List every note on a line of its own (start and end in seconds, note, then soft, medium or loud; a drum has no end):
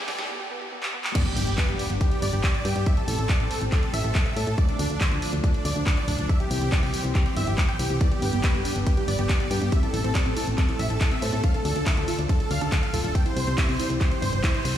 0.00 0.28 C2 medium
0.00 0.28 C3 medium
0.00 0.28 G3 medium
0.00 0.28 E4 medium
0.00 0.28 G4 medium
0.00 riser medium
0.08 0.14 B3 loud
0.08 0.17 D5 loud
0.08 kick medium
0.08 snare loud
0.08 open hi-hat medium
0.19 0.24 G4 loud
0.19 0.28 G4 medium
0.19 snare medium
0.19 closed hi-hat medium
0.29 0.35 B3 loud
0.40 0.46 G4 loud
0.51 0.56 B3 loud
0.62 0.67 G4 loud
0.72 0.78 B3 loud
0.83 0.89 G4 loud
0.83 clap medium
0.94 0.99 B3 loud
1.04 1.10 G4 loud
1.04 clap loud
1.15 2.85 G3 medium
1.15 2.85 B3 medium
1.15 2.85 D4 medium
1.15 1.24 D5 medium
1.15 kick loud
1.15 closed hi-hat loud
1.15 crash loud
1.15 impact medium
1.26 1.35 G4 medium
1.26 closed hi-hat medium
1.36 1.45 G1 medium
1.36 1.46 G4 medium
1.36 open hi-hat loud
1.47 1.56 G1 medium
1.47 1.56 G4 medium
1.47 closed hi-hat medium
1.58 1.67 B4 loud
1.58 kick loud
1.58 clap loud
1.58 closed hi-hat loud
1.69 1.77 G1 medium
1.69 1.78 G4 medium
1.69 closed hi-hat medium
1.79 1.89 G4 medium
1.79 open hi-hat loud
1.90 1.99 G1 medium
1.90 closed hi-hat medium
2.01 2.10 G4 medium
2.01 kick loud
2.01 closed hi-hat loud
2.12 2.21 G4 medium
2.12 closed hi-hat medium
2.22 2.31 G1 medium
2.22 2.31 D5 medium
2.22 open hi-hat loud
2.33 2.41 G1 medium
2.33 2.42 G4 medium
2.33 closed hi-hat medium
2.44 kick loud
2.44 clap loud
2.44 closed hi-hat medium
2.54 2.64 D5 medium
2.54 closed hi-hat medium
2.65 2.74 G2 medium
2.65 2.74 G4 medium
2.65 open hi-hat loud
2.76 2.84 G2 medium
2.76 2.85 G4 medium
2.76 closed hi-hat medium
2.86 4.56 G3 medium
2.86 6.26 A3 medium
2.86 4.56 C4 medium
2.86 2.96 E5 loud
2.86 kick loud
2.86 closed hi-hat medium
2.97 3.06 A4 medium
2.97 closed hi-hat medium
3.08 3.16 A1 loud
3.08 3.17 A4 medium
3.08 open hi-hat loud
3.19 3.27 A1 medium
3.19 3.28 A4 medium
3.19 closed hi-hat medium
3.29 3.39 D5 medium
3.29 kick loud
3.29 clap loud
3.29 closed hi-hat medium
3.40 3.49 A1 medium
3.40 3.49 A4 medium
3.40 closed hi-hat medium
3.51 3.60 A4 medium
3.51 open hi-hat loud
3.61 3.70 A1 medium
3.61 closed hi-hat medium
3.72 3.81 A4 medium
3.72 kick loud
3.72 clap medium
3.72 closed hi-hat loud
3.83 3.92 A4 medium
3.83 closed hi-hat medium
3.93 4.02 A1 loud
3.93 4.03 E5 loud
3.93 open hi-hat loud
4.04 4.13 A1 medium
4.04 4.13 A4 medium
4.04 closed hi-hat medium
4.15 4.24 A4 medium
4.15 kick loud
4.15 clap loud
4.15 closed hi-hat medium
4.26 4.35 E5 medium
4.26 closed hi-hat medium
4.36 4.45 A2 medium
4.36 4.46 A4 medium
4.36 open hi-hat loud
4.47 4.56 A2 medium
4.47 4.56 A4 medium
4.47 closed hi-hat medium
4.58 6.28 F3 medium
4.58 6.28 D4 medium
4.58 4.67 D5 loud
4.58 kick loud
4.58 closed hi-hat medium
4.69 4.78 D4 medium
4.69 closed hi-hat medium
4.79 4.88 D2 loud
4.79 4.89 D4 medium
4.79 open hi-hat loud
4.90 4.99 D2 medium
4.90 4.99 D4 medium
4.90 closed hi-hat medium
5.01 5.10 C5 medium
5.01 kick loud
5.01 clap loud
5.01 closed hi-hat medium
5.12 5.20 D2 medium
5.12 5.21 D4 medium
5.12 closed hi-hat medium
5.22 5.32 D4 medium
5.22 open hi-hat loud
5.33 5.41 D2 medium
5.33 closed hi-hat soft
5.44 5.53 D4 medium
5.44 kick loud
5.44 closed hi-hat medium
5.54 5.64 D4 medium
5.54 closed hi-hat soft
5.65 5.74 D2 medium
5.65 5.74 D5 loud
5.65 open hi-hat loud
5.76 5.84 D2 medium
5.76 5.85 D4 medium
5.76 closed hi-hat soft
5.87 5.96 D4 medium
5.87 kick loud
5.87 clap loud
5.87 closed hi-hat medium
5.97 6.06 D5 medium
5.97 closed hi-hat medium
6.08 6.16 D1 loud
6.08 6.17 D4 medium
6.08 open hi-hat loud
6.19 6.27 D1 medium
6.19 6.28 D4 medium
6.19 closed hi-hat medium
6.29 7.99 E3 medium
6.29 11.40 G3 medium
6.29 7.99 C4 loud
6.29 6.38 E5 loud
6.29 kick loud
6.29 closed hi-hat medium
6.40 6.49 G4 medium
6.40 closed hi-hat soft
6.51 6.59 C2 medium
6.51 6.60 G4 medium
6.51 open hi-hat loud
6.61 6.70 C2 medium
6.61 6.71 G4 medium
6.61 closed hi-hat medium
6.72 6.81 D5 loud
6.72 kick loud
6.72 clap loud
6.72 closed hi-hat medium
6.83 6.91 C2 medium
6.83 6.92 G4 medium
6.83 open hi-hat medium
6.94 7.03 G4 medium
6.94 open hi-hat loud
7.04 7.13 C2 medium
7.04 closed hi-hat medium
7.15 7.24 G4 medium
7.15 kick loud
7.15 clap medium
7.15 closed hi-hat medium
7.26 7.35 G4 medium
7.26 closed hi-hat soft
7.36 7.45 G1 loud
7.36 7.46 E5 loud
7.36 open hi-hat loud
7.47 7.56 G1 medium
7.47 7.56 G4 medium
7.47 closed hi-hat soft
7.58 7.67 G4 medium
7.58 kick loud
7.58 clap loud
7.58 closed hi-hat medium
7.69 7.78 G5 medium
7.69 closed hi-hat soft
7.79 7.88 C2 medium
7.79 7.89 G4 medium
7.79 open hi-hat loud
7.90 7.99 C2 medium
7.90 7.99 G4 medium
7.90 closed hi-hat medium
8.01 9.71 D3 medium
8.01 8.07 B3 loud
8.01 9.71 B3 medium
8.01 8.10 D5 loud
8.01 kick loud
8.01 closed hi-hat medium
8.01 ride medium
8.12 8.17 G4 loud
8.12 8.21 G4 medium
8.12 closed hi-hat medium
8.22 8.31 G1 loud
8.22 8.31 G4 medium
8.22 8.31 B4 medium
8.22 open hi-hat loud
8.33 8.42 G1 medium
8.33 8.39 B3 loud
8.33 8.42 G4 medium
8.33 closed hi-hat medium
8.44 8.52 B3 medium
8.44 8.53 B4 medium
8.44 kick loud
8.44 clap loud
8.44 closed hi-hat medium
8.44 ride medium
8.54 8.63 G1 medium
8.54 8.64 G4 medium
8.54 8.60 G4 medium
8.54 closed hi-hat soft
8.65 8.74 D4 loud
8.65 8.74 G4 medium
8.65 open hi-hat loud
8.76 8.84 G1 medium
8.76 8.84 B4 medium
8.76 closed hi-hat medium
8.86 8.92 B3 medium
8.86 8.96 G4 medium
8.86 kick loud
8.86 closed hi-hat loud
8.86 ride medium
8.97 9.06 G4 medium
8.97 9.03 G4 loud
8.97 closed hi-hat soft
9.08 9.16 G1 loud
9.08 9.16 B4 medium
9.08 9.17 D5 loud
9.08 open hi-hat loud
9.19 9.27 G1 medium
9.19 9.24 B3 loud
9.19 9.28 G4 medium
9.19 closed hi-hat soft
9.29 9.38 G4 medium
9.29 9.35 G4 medium
9.29 kick loud
9.29 clap loud
9.29 closed hi-hat medium
9.29 ride medium
9.40 9.46 G4 medium
9.40 9.49 D5 medium
9.40 closed hi-hat medium
9.51 9.59 G2 medium
9.51 9.59 D4 loud
9.51 9.60 G4 medium
9.51 open hi-hat loud
9.62 9.70 G2 medium
9.62 9.67 B3 medium
9.62 9.71 G4 medium
9.62 closed hi-hat soft
9.72 11.42 C3 medium
9.72 13.12 A3 medium
9.72 9.78 C4 medium
9.72 9.81 E5 medium
9.72 kick loud
9.72 closed hi-hat medium
9.72 ride medium
9.83 9.86 E4 medium
9.83 9.92 A4 medium
9.83 closed hi-hat medium
9.94 10.02 A1 loud
9.94 10.03 A4 medium
9.94 10.02 A4 medium
9.94 open hi-hat loud
10.04 10.13 A1 medium
10.04 10.10 C4 loud
10.04 10.13 A4 medium
10.04 closed hi-hat medium
10.15 10.19 G4 medium
10.15 10.24 D5 loud
10.15 kick loud
10.15 clap loud
10.15 closed hi-hat medium
10.15 ride medium
10.26 10.34 A1 medium
10.26 10.34 C4 loud
10.26 10.35 A4 medium
10.26 closed hi-hat medium
10.36 10.45 E4 loud
10.36 10.46 A4 medium
10.36 open hi-hat loud
10.47 10.56 A1 medium
10.47 10.53 C4 medium
10.47 closed hi-hat medium
10.58 10.64 C4 medium
10.58 10.67 A4 medium
10.58 kick loud
10.58 clap medium
10.58 closed hi-hat loud
10.58 ride medium
10.69 10.72 E4 medium
10.69 10.78 A4 medium
10.69 closed hi-hat medium
10.79 10.88 A1 loud
10.79 10.85 A4 medium
10.79 10.89 E5 loud
10.79 open hi-hat loud
10.90 10.99 A1 medium
10.90 10.99 E4 medium
10.90 10.99 A4 medium
10.90 closed hi-hat medium
11.01 11.09 A4 medium
11.01 11.10 A4 medium
11.01 kick loud
11.01 clap loud
11.01 closed hi-hat medium
11.01 ride medium
11.11 11.20 C4 loud
11.11 11.21 E5 medium
11.11 closed hi-hat medium
11.22 11.31 A2 medium
11.22 11.31 A4 medium
11.22 11.28 C5 loud
11.22 open hi-hat loud
11.33 11.41 A2 medium
11.33 11.41 C4 medium
11.33 11.42 A4 medium
11.33 closed hi-hat medium
11.44 13.13 D3 medium
11.44 13.13 F3 medium
11.44 11.49 D4 loud
11.44 11.53 F5 loud
11.44 kick loud
11.44 closed hi-hat medium
11.44 ride medium
11.54 11.60 A4 loud
11.54 11.64 A4 medium
11.54 closed hi-hat medium
11.65 11.74 D2 loud
11.65 11.74 A4 medium
11.65 11.74 D5 medium
11.65 open hi-hat loud
11.76 11.84 D2 medium
11.76 11.82 D4 loud
11.76 11.85 A4 medium
11.76 closed hi-hat medium
11.87 11.95 D4 medium
11.87 11.96 E5 medium
11.87 kick loud
11.87 clap loud
11.87 closed hi-hat loud
11.87 ride medium
11.97 12.06 D2 medium
11.97 12.03 A4 medium
11.97 12.06 A4 medium
11.97 closed hi-hat medium
12.08 12.16 F4 loud
12.08 12.17 A4 medium
12.08 open hi-hat loud
12.19 12.27 D2 medium
12.19 12.27 D5 medium
12.19 closed hi-hat medium
12.29 12.35 D4 medium
12.29 12.39 A4 medium
12.29 kick loud
12.29 closed hi-hat loud
12.29 ride medium
12.40 12.46 A4 loud
12.40 12.49 A4 medium
12.40 closed hi-hat medium
12.51 12.59 D2 medium
12.51 12.59 D5 medium
12.51 12.60 F5 loud
12.51 open hi-hat loud
12.61 12.70 D2 medium
12.61 12.67 D4 loud
12.61 12.71 A4 medium
12.61 closed hi-hat medium
12.72 12.81 A4 medium
12.72 12.78 A4 medium
12.72 kick loud
12.72 clap loud
12.72 closed hi-hat loud
12.72 ride medium
12.83 12.89 A4 medium
12.83 12.92 F5 medium
12.83 closed hi-hat medium
12.94 13.02 D1 medium
12.94 13.02 F4 loud
12.94 13.03 A4 medium
12.94 open hi-hat loud
13.04 13.13 D1 medium
13.04 13.10 D4 medium
13.04 13.13 A4 medium
13.04 closed hi-hat medium
13.15 14.78 C3 medium
13.15 14.78 E3 medium
13.15 14.78 G3 loud
13.15 13.21 C4 medium
13.15 13.24 G5 loud
13.15 kick loud
13.15 closed hi-hat loud
13.15 ride medium
13.26 13.29 E4 medium
13.26 13.35 C5 medium
13.26 closed hi-hat medium
13.36 13.45 C2 loud
13.36 13.46 C5 medium
13.36 13.45 C5 medium
13.36 open hi-hat loud
13.47 13.56 C2 medium
13.47 13.53 C4 loud
13.47 13.56 C5 medium
13.47 closed hi-hat medium
13.58 13.61 G4 medium
13.58 13.67 E5 medium
13.58 kick loud
13.58 clap loud
13.58 closed hi-hat loud
13.58 ride medium
13.68 13.77 C2 medium
13.68 13.77 C4 loud
13.68 13.78 C5 medium
13.68 open hi-hat medium
13.79 13.88 E4 loud
13.79 13.88 C5 medium
13.79 open hi-hat loud
13.90 13.99 C2 medium
13.90 13.96 C4 medium
13.90 closed hi-hat medium
14.01 14.06 C4 medium
14.01 14.10 C5 medium
14.01 kick loud
14.01 clap medium
14.01 closed hi-hat loud
14.01 ride medium
14.11 14.15 E4 medium
14.11 14.21 C5 medium
14.11 closed hi-hat medium
14.22 14.31 G1 loud
14.22 14.31 C5 loud
14.22 14.28 C5 medium
14.22 open hi-hat loud
14.33 14.41 G1 medium
14.33 14.39 C5 loud
14.33 14.42 C5 medium
14.33 closed hi-hat medium
14.44 14.47 E4 loud
14.44 14.53 C5 medium
14.44 kick loud
14.44 clap loud
14.44 closed hi-hat medium
14.44 ride medium
14.54 14.63 E4 medium
14.54 14.63 C5 medium
14.54 closed hi-hat medium
14.65 14.74 C2 medium
14.65 14.71 C5 medium
14.65 14.74 C5 medium
14.65 open hi-hat loud